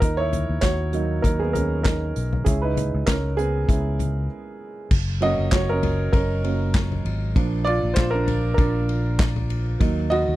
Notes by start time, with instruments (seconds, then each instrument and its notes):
0.00 fingered electric bass D#2, upright piano D#4 A#4, kick, closed hi-hat
0.17 upright piano E4 C#5
0.33 closed hi-hat, floor tom
0.49 fingered electric bass D#2
0.61 fingered electric bass D#2, upright piano F#4 C#5, kick, snare, clap, closed hi-hat
0.93 upright piano F#3 A#3 D#4, closed hi-hat
1.22 fingered electric bass D#2, upright piano D#4 A#4, kick, closed hi-hat
1.39 upright piano B3 G#4
1.53 upright piano C#4 A#4, closed hi-hat, floor tom
1.83 upright piano D#4 A#4, kick, snare, clap, closed hi-hat
2.16 fingered electric bass B1, closed hi-hat
2.33 floor tom
2.45 fingered electric bass C#2, upright piano G#3 C#4 E4 G#4, kick, closed hi-hat
2.62 upright piano D#4 B4
2.77 closed hi-hat, floor tom
2.94 fingered electric bass C#2
3.06 fingered electric bass C#2, upright piano C#4 A#4, kick, snare, clap, closed hi-hat
3.37 upright piano B3 G#4, closed hi-hat
3.68 fingered electric bass C#2, upright piano G#3 C#4 E4, kick, closed hi-hat
3.99 closed hi-hat, floor tom
4.91 fingered electric bass F#1, kick, crash
5.21 upright piano F#3 A#3 C#4 F#4 D#5, ride
5.38 fingered electric bass F#1
5.52 upright piano F#4 C#5, kick, snare, clap, ride
5.69 upright piano C#4 A#4
5.83 floor tom, ride
6.13 fingered electric bass F#1, upright piano C#4 A#4, kick, ride
6.44 upright piano F#3 A#3 C#4, ride
6.74 kick, snare, clap, ride
6.92 floor tom
7.05 fingered electric bass G#1, ride
7.36 fingered electric bass A#1, upright piano F3 A#3 D4, kick, ride
7.65 upright piano F4 D5, ride
7.83 fingered electric bass A#1
7.94 fingered electric bass A#1, upright piano F4 C5, kick, snare, clap, ride
8.11 upright piano D4 A#4
8.28 floor tom, ride
8.54 fingered electric bass A#1, upright piano A#4, kick
8.58 upright piano D4, ride
8.89 ride
9.19 kick, snare, clap, ride
9.36 floor tom
9.50 ride
9.79 fingered electric bass D#2, upright piano F#3 A#3 D#4, kick, ride
10.10 upright piano F#4 D#5, ride
10.28 fingered electric bass D#2